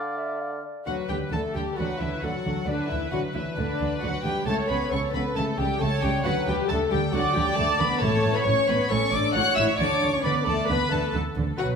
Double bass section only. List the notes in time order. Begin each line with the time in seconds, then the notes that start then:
0.87 D2
1.09 D2
1.32 D2
1.55 D2
1.78 D2
2.01 D2
2.24 D2
2.46 D2
2.68 D2
2.91 D2
3.13 D2
3.35 D2
3.57 D2
3.80 D2
4.02 D2
4.25 D2
4.47 C#2
4.69 C#2
4.92 C#2
5.15 C#2
5.37 C#2
5.59 C#2
5.82 C#2
6.04 C#2
6.26 D2
6.47 D2
6.70 D2
6.92 D2
7.14 D2
7.36 D2
7.58 D2
7.80 D2
8.02 A1
8.24 A1
8.46 A1
8.69 A1
8.91 A1
9.13 A1
9.35 A1
9.57 A1
9.80 D2
10.02 D2
10.24 D2
10.47 D2
10.69 D2
10.92 D2
11.15 D2
11.37 D2
11.59 B1